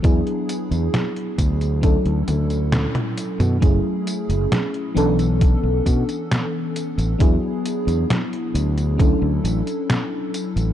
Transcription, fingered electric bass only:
\new Staff \with { instrumentName = "Fingered electric bass" } { \clef bass \time 4/4 \key e \mixolydian \tempo 4 = 67 e,16 r8 e,16 r8 d,8. d,16 d,8. r8 b,16 | fis,,16 r8 fis,,16 r8 b,,8. b,,16 b,16 r4 a,,16 | e,16 r8 e,16 r8 d,8. d,16 a,,16 r4 a,,16 | }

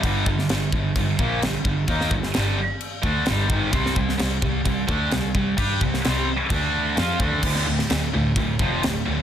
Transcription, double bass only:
\new Staff \with { instrumentName = "Double bass" } { \clef bass \time 4/4 \key d \minor \tempo 4 = 130 g,,8 g,,8 g,,8 g,,8 g,,8 bes,,8 g,,8 g,,8 | ees,8 g,,8 g,,8 r4 d,8 g,,8 gis,,8 | c,8 c,8 c,8 c,8 c,8 d,8 c,8 c,8 | g,8 c,8 c,8 r8 d,4 f,8 d,8 |
d,8 d,8 d,8 d,8 d,8 f,,8 d,8 d,8 | }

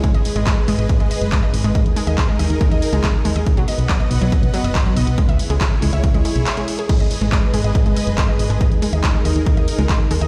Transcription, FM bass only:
\new Staff \with { instrumentName = "FM bass" } { \clef bass \time 4/4 \key gis \minor \tempo 4 = 140 r16 gis,,16 r16 gis,,16 r8 gis,,16 gis,,16 r16 gis,,16 r16 fis,,16 r8 gis,,16 gis,,16 | r16 dis,16 r16 dis,16 r8 dis,16 dis,16 r16 dis,16 r16 cis,16 r8 dis,16 dis,16 | r16 b,,16 r16 b,,16 r8 b,,16 b,,16 r16 b,,16 r16 fis,,16 r8 b,,16 b,,16 | r16 cis,16 r16 cis,16 r8 cis,16 cis,16 r16 cis,16 r16 b,,16 r4 |
r16 gis,,16 r16 gis,,16 r8 gis,,16 gis,,16 r16 gis,,16 r16 fis,,16 r8 gis,,16 gis,,16 | r16 dis,16 r16 dis,16 r8 dis,16 dis,16 r16 dis,16 r16 cis,16 r8 dis,16 dis,16 | }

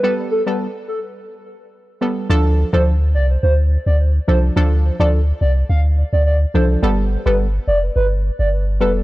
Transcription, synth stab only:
\new Staff \with { instrumentName = "Synth stab" } { \time 4/4 \key d \dorian \tempo 4 = 106 <g b a'>8. <g b a'>16 r2 r8 <g b a'>8 | <f d' a'>8. <f d' a'>16 r2 r8 <f d' a'>8 | <f d' a'>8. <f d' a'>16 r2 r8 <f d' a'>8 | <g b a'>8. <g b a'>16 r2 r8 <g b a'>8 | }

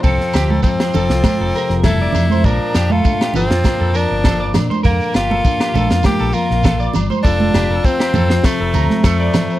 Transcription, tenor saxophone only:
\new Staff \with { instrumentName = "Tenor saxophone" } { \time 4/4 \key f \major \tempo 4 = 100 c'4 c'2 e'4 | d'8. f'8. c'4 d'4 r8 | bes8 f'4. g'8 f'4 r8 | d'4 c'4 a4 a4 | }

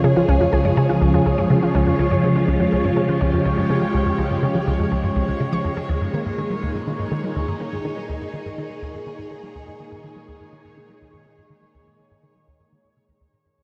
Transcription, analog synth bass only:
\new Staff \with { instrumentName = "Analog synth bass" } { \clef bass \time 4/4 \key ees \mixolydian \tempo 4 = 123 des16 f16 des,16 f,16 des,16 g,16 des16 f16 des,16 f,16 des,16 g,16 des16 f16 des,16 f,16 | des,16 g,16 des16 f16 des,16 f,16 des,16 g,16 des16 f16 des,16 f,16 des,16 g,16 des16 f16 | des,16 f,16 des,16 g,16 des16 f16 des,16 f,16 des,16 g,16 des,16 des,16 des16 f16 f,16 f,16 | ees,16 g,16 ees16 aes,16 ees16 g16 ees,16 g,16 ees16 aes,16 ees16 g16 ees,16 g,16 ees16 aes,16 |
ees16 g16 ees,16 g,16 ees16 aes,16 ees16 g16 ees,16 g,16 ees16 aes,16 ees16 g16 ees,16 g,16 | ees16 aes,16 ees16 g16 ees,16 g,16 ees16 aes,16 ees16 g16 ees,16 g,16 ees16 aes,16 ees16 g16 | ees,16 g,16 ees16 aes,16 ees16 g16 ees,16 g,16 ees16 aes,16 des16 ees,16 ees,16 bes,16 g,16 ees,16 | }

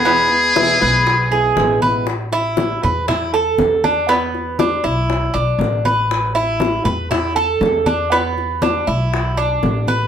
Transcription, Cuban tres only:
\new Staff \with { instrumentName = "Cuban tres" } { \time 4/4 \key e \phrygian \tempo 4 = 119 b4 e'8 b'4 gis'4 b'8 | \key c \major r8 e'4 b'8 e'8 a'4 d'8 | b4 d'8 e'4 d'4 b'8~ | b'8 e'4 b'8 e'8 a'4 d'8 |
b4 d'8 e'4 d'4 b'8 | }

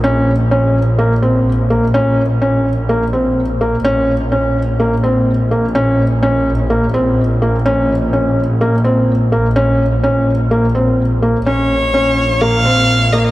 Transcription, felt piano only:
\new Staff \with { instrumentName = "Felt piano" } { \time 4/4 \key bes \minor \tempo 4 = 126 des'4 des'4 bes8 c'4 bes8 | des'4 des'4 bes8 c'4 bes8 | des'4 des'4 bes8 c'4 bes8 | des'4 des'4 bes8 c'4 bes8 |
des'4 des'4 bes8 c'4 bes8 | des'4 des'4 bes8 c'4 bes8 | des'4 des'4 bes8 c'4 bes8 | }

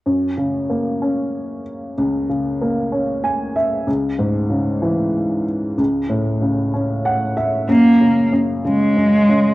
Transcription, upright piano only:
<<
  \new Staff \with { instrumentName = "Upright piano" } { \time 6/8 \key fis \mixolydian \tempo 4. = 63 r2. | r2 gis''8 e''8 | r2. | r2 fis''8 e''8 |
r2. | }
  \new Staff \with { instrumentName = "Upright piano" } { \clef bass \time 6/8 \key fis \mixolydian fis,8 cis8 ais8 cis'4. | cis,8 cis8 ais8 cis'4. | cis,8 gis,8 cis8 e4. | cis,8 a,8 cis8 cis'4. |
fis,8 cis8 fis,8 cis8 fis,8 cis8 | }
>>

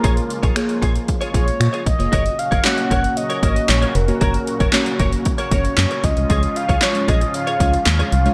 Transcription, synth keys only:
\new Staff \with { instrumentName = "Synth keys" } { \time 4/4 \key ges \major \tempo 4 = 115 <bes f' aes' des''>8. r16 <bes f' aes' des''>4 r8 <bes f' aes' des''>4 r16 <bes f' aes' des''>16 | r4 <bes des' ges' des''>4 r8 <bes des' ges' des''>4 r16 <bes des' ges' des''>16~ | <bes des' ges' des''>8. r16 <bes des' ges' des''>4 r8 <bes des' ges' des''>4 <aes des' f' des''>8~ | <aes des' f' des''>8. r16 <aes des' f' des''>4 r8 <aes des' f' des''>4 r16 <aes des' f' des''>16 | }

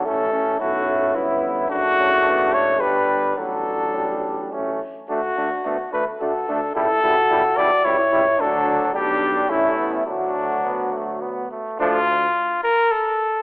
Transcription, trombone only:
\new Staff \with { instrumentName = "Trombone" } { \clef bass \time 3/4 \key d \major \tempo 4 = 108 a4 a4 b4 | a2 g4 | fis4 g4 a8 r8 | a8 a8 a8 a8 a8 a8 |
g8 g8 g8 g8 g8 g8 | fis4 g4 a4 | fis2~ fis8 r8 | \key d \minor f8 r2 r8 | }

